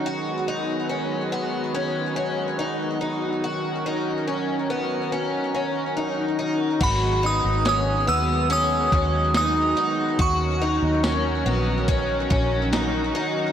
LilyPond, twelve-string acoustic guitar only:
\new Staff \with { instrumentName = "Twelve-string acoustic guitar" } { \time 4/4 \key gis \minor \tempo 4 = 71 fis'8 dis'8 cis'8 b8 cis'8 cis'8 dis'8 dis'8 | fis'8 dis'8 cis'8 b8 cis'8 cis'8 dis'8 dis'8 | fis'8 dis'8 cis'8 b8 cis'8 cis'8 dis'8 dis'8 | fis'8 dis'8 cis'8 b8 cis'8 cis'8 dis'8 dis'8 | }